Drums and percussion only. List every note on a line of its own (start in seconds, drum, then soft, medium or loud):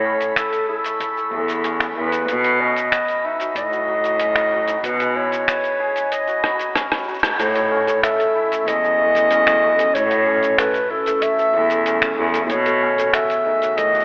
0.21 closed hi-hat soft
0.21 cabasa medium
0.36 finger snap medium
0.36 closed hi-hat medium
0.36 cabasa medium
0.53 closed hi-hat soft
0.53 cabasa soft
0.84 closed hi-hat soft
0.84 cabasa medium
1.00 kick loud
1.00 closed hi-hat medium
1.00 cabasa soft
1.17 cabasa soft
1.32 kick loud
1.48 closed hi-hat soft
1.48 cabasa medium
1.64 closed hi-hat medium
1.64 cabasa medium
1.80 finger snap medium
1.80 cabasa soft
2.12 closed hi-hat soft
2.12 cabasa medium
2.28 kick loud
2.28 closed hi-hat medium
2.28 cabasa soft
2.44 closed hi-hat soft
2.44 cabasa soft
2.76 closed hi-hat soft
2.76 cabasa medium
2.92 finger snap medium
2.92 closed hi-hat medium
2.92 cabasa soft
3.08 closed hi-hat soft
3.08 cabasa soft
3.40 closed hi-hat soft
3.40 cabasa medium
3.55 kick loud
3.55 closed hi-hat medium
3.55 cabasa medium
3.73 cabasa soft
4.04 closed hi-hat soft
4.04 cabasa medium
4.20 closed hi-hat medium
4.20 cabasa medium
4.36 finger snap medium
4.36 cabasa soft
4.68 closed hi-hat soft
4.68 cabasa medium
4.83 kick loud
4.83 closed hi-hat medium
4.83 cabasa medium
5.00 closed hi-hat soft
5.00 cabasa soft
5.32 closed hi-hat soft
5.32 cabasa medium
5.48 finger snap medium
5.48 closed hi-hat medium
5.48 cabasa medium
5.64 closed hi-hat soft
5.64 cabasa soft
5.96 closed hi-hat soft
5.96 cabasa medium
6.12 closed hi-hat medium
6.12 cabasa medium
6.28 closed hi-hat soft
6.28 cabasa soft
6.44 cross-stick medium
6.59 closed hi-hat soft
6.59 cabasa medium
6.75 cross-stick medium
6.75 closed hi-hat medium
6.75 cabasa medium
6.92 cross-stick medium
6.92 closed hi-hat soft
6.92 cabasa soft
6.98 cabasa soft
7.03 cabasa soft
7.08 cabasa soft
7.14 cabasa soft
7.19 cabasa soft
7.23 cross-stick medium
7.23 closed hi-hat soft
7.23 cabasa medium
7.39 kick loud
7.39 closed hi-hat medium
7.39 cabasa medium
7.55 closed hi-hat soft
7.55 cabasa soft
7.87 closed hi-hat soft
7.87 cabasa medium
8.03 finger snap medium
8.03 closed hi-hat medium
8.03 cabasa medium
8.20 closed hi-hat soft
8.20 cabasa soft
8.52 closed hi-hat soft
8.52 cabasa medium
8.67 kick loud
8.67 closed hi-hat medium
8.67 cabasa medium
8.84 cabasa soft
9.15 closed hi-hat soft
9.15 cabasa medium
9.31 closed hi-hat medium
9.31 cabasa medium
9.47 finger snap medium
9.47 cabasa soft
9.79 closed hi-hat soft
9.79 cabasa medium
9.95 kick loud
9.95 closed hi-hat medium
9.95 cabasa medium
10.11 closed hi-hat soft
10.11 cabasa soft
10.43 closed hi-hat soft
10.43 cabasa medium
10.58 finger snap medium
10.58 closed hi-hat medium
10.58 cabasa medium
10.74 closed hi-hat soft
10.74 cabasa soft
11.06 closed hi-hat soft
11.06 cabasa medium
11.22 kick loud
11.22 closed hi-hat medium
11.22 cabasa medium
11.39 cabasa soft
11.54 kick loud
11.70 closed hi-hat soft
11.70 cabasa medium
11.86 closed hi-hat medium
11.86 cabasa medium
12.02 finger snap medium
12.02 cabasa soft
12.18 kick medium
12.34 closed hi-hat soft
12.34 cabasa medium
12.50 kick loud
12.50 closed hi-hat medium
12.50 cabasa medium
12.66 closed hi-hat soft
12.66 cabasa soft
12.98 closed hi-hat soft
12.98 cabasa medium
13.13 finger snap medium
13.13 closed hi-hat medium
13.13 cabasa medium
13.30 closed hi-hat soft
13.30 cabasa soft
13.62 closed hi-hat soft
13.62 cabasa medium
13.78 kick loud
13.78 closed hi-hat medium
13.78 cabasa medium
13.95 cabasa soft
14.00 cabasa soft